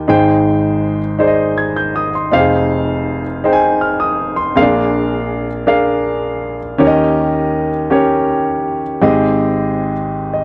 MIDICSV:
0, 0, Header, 1, 2, 480
1, 0, Start_track
1, 0, Key_signature, -4, "major"
1, 0, Tempo, 745342
1, 58, Time_signature, 6, 3, 24, 8
1, 6725, End_track
2, 0, Start_track
2, 0, Title_t, "Grand piano"
2, 0, Program_c, 0, 0
2, 0, Control_c, 0, 64, 127
2, 0, Note_on_c, 0, 39, 64
2, 0, Note_on_c, 0, 51, 70
2, 0, Note_on_c, 0, 63, 66
2, 0, Note_on_c, 0, 67, 58
2, 0, Note_on_c, 0, 70, 62
2, 0, Note_on_c, 0, 79, 78
2, 50, Note_off_c, 0, 63, 0
2, 50, Note_on_c, 0, 63, 76
2, 52, Note_on_c, 0, 68, 72
2, 54, Note_on_c, 0, 32, 65
2, 54, Note_on_c, 0, 44, 65
2, 58, Note_on_c, 0, 72, 69
2, 62, Note_off_c, 0, 79, 0
2, 62, Note_on_c, 0, 79, 89
2, 67, Control_c, 0, 64, 0
2, 70, Note_off_c, 0, 39, 0
2, 70, Note_off_c, 0, 51, 0
2, 72, Note_off_c, 0, 67, 0
2, 73, Note_off_c, 0, 70, 0
2, 164, Control_c, 0, 64, 127
2, 627, Note_off_c, 0, 63, 0
2, 628, Note_off_c, 0, 68, 0
2, 631, Note_off_c, 0, 72, 0
2, 633, Note_off_c, 0, 79, 0
2, 764, Note_on_c, 0, 63, 69
2, 770, Note_on_c, 0, 68, 62
2, 773, Note_on_c, 0, 72, 66
2, 777, Note_on_c, 0, 74, 59
2, 819, Note_off_c, 0, 74, 0
2, 821, Note_on_c, 0, 75, 82
2, 1015, Note_on_c, 0, 92, 58
2, 1130, Note_off_c, 0, 92, 0
2, 1136, Note_on_c, 0, 91, 62
2, 1251, Note_off_c, 0, 91, 0
2, 1260, Note_on_c, 0, 87, 64
2, 1344, Note_off_c, 0, 63, 0
2, 1347, Note_off_c, 0, 68, 0
2, 1348, Note_off_c, 0, 72, 0
2, 1372, Note_off_c, 0, 75, 0
2, 1373, Note_off_c, 0, 87, 0
2, 1385, Note_on_c, 0, 84, 55
2, 1469, Note_off_c, 0, 32, 0
2, 1469, Note_off_c, 0, 44, 0
2, 1491, Note_on_c, 0, 63, 72
2, 1496, Note_on_c, 0, 41, 60
2, 1498, Note_on_c, 0, 29, 58
2, 1498, Note_on_c, 0, 67, 60
2, 1501, Note_on_c, 0, 72, 68
2, 1502, Note_on_c, 0, 77, 91
2, 1506, Control_c, 0, 64, 0
2, 1535, Note_on_c, 0, 68, 68
2, 1539, Note_off_c, 0, 67, 0
2, 1609, Note_off_c, 0, 84, 0
2, 1612, Control_c, 0, 64, 127
2, 2067, Note_off_c, 0, 63, 0
2, 2073, Note_off_c, 0, 72, 0
2, 2073, Note_off_c, 0, 77, 0
2, 2089, Note_off_c, 0, 68, 0
2, 2215, Note_on_c, 0, 63, 74
2, 2219, Note_on_c, 0, 68, 59
2, 2222, Note_on_c, 0, 72, 66
2, 2226, Note_on_c, 0, 79, 59
2, 2264, Note_off_c, 0, 79, 0
2, 2271, Note_on_c, 0, 80, 83
2, 2455, Note_on_c, 0, 89, 59
2, 2570, Note_off_c, 0, 89, 0
2, 2575, Note_on_c, 0, 87, 65
2, 2790, Note_off_c, 0, 63, 0
2, 2792, Note_off_c, 0, 68, 0
2, 2793, Note_off_c, 0, 72, 0
2, 2804, Note_off_c, 0, 87, 0
2, 2810, Note_on_c, 0, 84, 60
2, 2817, Note_off_c, 0, 80, 0
2, 2910, Note_off_c, 0, 41, 0
2, 2911, Note_off_c, 0, 29, 0
2, 2933, Note_on_c, 0, 60, 70
2, 2935, Note_on_c, 0, 68, 73
2, 2938, Note_on_c, 0, 46, 59
2, 2939, Note_on_c, 0, 34, 65
2, 2940, Note_on_c, 0, 70, 67
2, 2942, Note_on_c, 0, 77, 91
2, 2944, Control_c, 0, 64, 0
2, 2974, Note_on_c, 0, 62, 85
2, 2977, Note_off_c, 0, 60, 0
2, 3041, Note_off_c, 0, 84, 0
2, 3073, Control_c, 0, 64, 127
2, 3510, Note_off_c, 0, 68, 0
2, 3512, Note_off_c, 0, 70, 0
2, 3513, Note_off_c, 0, 77, 0
2, 3529, Note_off_c, 0, 62, 0
2, 3650, Note_on_c, 0, 62, 78
2, 3652, Note_on_c, 0, 70, 65
2, 3653, Note_on_c, 0, 68, 70
2, 3657, Note_on_c, 0, 77, 82
2, 4227, Note_off_c, 0, 62, 0
2, 4228, Note_off_c, 0, 70, 0
2, 4229, Note_off_c, 0, 68, 0
2, 4230, Note_off_c, 0, 77, 0
2, 4352, Note_off_c, 0, 34, 0
2, 4352, Note_off_c, 0, 46, 0
2, 4368, Note_on_c, 0, 61, 88
2, 4373, Note_on_c, 0, 67, 75
2, 4374, Note_on_c, 0, 39, 66
2, 4376, Note_on_c, 0, 51, 69
2, 4377, Note_on_c, 0, 70, 76
2, 4380, Note_on_c, 0, 73, 70
2, 4385, Control_c, 0, 64, 0
2, 4420, Note_off_c, 0, 73, 0
2, 4424, Note_on_c, 0, 75, 93
2, 4514, Control_c, 0, 64, 127
2, 4946, Note_off_c, 0, 61, 0
2, 4948, Note_off_c, 0, 67, 0
2, 4951, Note_off_c, 0, 70, 0
2, 4974, Note_off_c, 0, 75, 0
2, 5089, Note_on_c, 0, 61, 72
2, 5091, Note_on_c, 0, 67, 73
2, 5096, Note_on_c, 0, 70, 61
2, 5100, Note_on_c, 0, 73, 71
2, 5667, Note_off_c, 0, 61, 0
2, 5668, Note_off_c, 0, 67, 0
2, 5670, Note_off_c, 0, 70, 0
2, 5672, Note_off_c, 0, 73, 0
2, 5790, Note_off_c, 0, 39, 0
2, 5791, Note_off_c, 0, 51, 0
2, 5806, Note_on_c, 0, 60, 82
2, 5809, Note_on_c, 0, 67, 78
2, 5810, Note_on_c, 0, 44, 66
2, 5811, Note_on_c, 0, 32, 63
2, 5811, Note_on_c, 0, 68, 75
2, 5814, Note_on_c, 0, 75, 88
2, 5825, Control_c, 0, 64, 0
2, 5938, Control_c, 0, 64, 127
2, 6385, Note_off_c, 0, 60, 0
2, 6387, Note_off_c, 0, 67, 0
2, 6388, Note_off_c, 0, 68, 0
2, 6389, Note_off_c, 0, 75, 0
2, 6656, Note_on_c, 0, 75, 60
2, 6725, Note_off_c, 0, 32, 0
2, 6725, Note_off_c, 0, 44, 0
2, 6725, Note_off_c, 0, 75, 0
2, 6725, End_track
0, 0, End_of_file